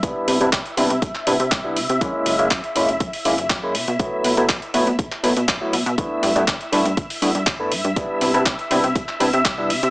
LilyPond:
<<
  \new Staff \with { instrumentName = "String machine" } { \time 4/4 \key c \lydian \tempo 4 = 121 <e'' e'''>1~ | <e'' e'''>1~ | <e'' e'''>1 | <e'' e'''>1~ |
<e'' e'''>1 | }
  \new Staff \with { instrumentName = "Tine electric piano" } { \time 4/4 \key c \lydian <g b d' e'>8. <g b d' e'>16 r8 <g b d' e'>16 r8. <g b d' e'>16 r8 <g b d' e'>16 r8 | <aes ais cis' e'>8. <aes ais cis' e'>16 r8 <aes ais cis' e'>16 r8. <aes ais cis' e'>16 r8 <aes ais cis' e'>16 r8 | <fis a b e'>8. <fis a b e'>16 r8 <fis a b e'>16 r8. <fis a b e'>16 r8 <fis a b e'>16 r8 | <a b d' e'>8. <a b d' e'>16 r8 <a b d' e'>16 r8. <a b d' e'>16 r8 <a b d' e'>16 r8 |
<g b d' e'>8. <g b d' e'>16 r8 <g b d' e'>16 r8. <g b d' e'>16 r8 <g b d' e'>16 r8 | }
  \new Staff \with { instrumentName = "Analog synth bass" } { \clef bass \time 4/4 \key c \lydian c,16 r16 c16 c16 c,16 r16 c16 c16 c,16 r16 c16 c16 c,8 c16 c16 | fis,16 r16 fis,,16 fis,,16 fis,16 r16 fis,,16 fis,,16 fis,16 r16 fis,,16 fis,,16 fis,8 b,16 b,16 | b,,16 r16 b,16 b,16 b,,16 r16 b,16 b,16 b,,16 r16 b,16 b,16 b,,16 r16 b,16 b,16 | g,,16 r16 g,16 g,16 g,,16 r16 g,16 g,16 g,,16 r16 g,16 g,16 g,,8 g,16 g,16 |
c,16 r16 c16 c16 c,16 r16 c16 c16 c,16 r16 c16 c16 c,8 c16 c16 | }
  \new DrumStaff \with { instrumentName = "Drums" } \drummode { \time 4/4 <hh bd>8 hho16 hh16 <hc hh bd>16 hh16 hho16 hh16 <hh bd>16 hc16 hho16 hh16 <hc hh bd>8 hho16 hh16 | <hh bd>8 hho16 hh16 <hc hh bd>16 hh16 hho16 hh16 <hh bd>16 hho16 hho16 hh16 <hc hh bd>8 hho16 hh16 | <hh bd>8 hho16 hh16 <hc hh bd>16 hh16 hho16 hh16 <hh bd>16 hc16 hho16 hh16 <hc hh bd>8 hho16 hh16 | <hh bd>8 hho16 hh16 <hc hh bd>16 hh16 hho16 hh16 <hh bd>16 hho16 hho16 hh16 <hc hh bd>8 hho16 hh16 |
<hh bd>8 hho16 hh16 <hc hh bd>16 hh16 hho16 hh16 <hh bd>16 hc16 hho16 hh16 <hc hh bd>8 hho16 hh16 | }
>>